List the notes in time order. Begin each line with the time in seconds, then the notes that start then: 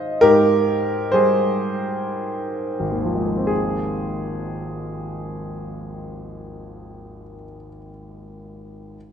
Already playing: G#2 D#3 C5 D#5 F5
0.21 G#2 G4 A#4
1.12 G3 G#4 C5
2.80 G#1
2.92 D#2
3.03 F3
3.15 G#3
3.26 A#3
3.37 C4
3.47 G#4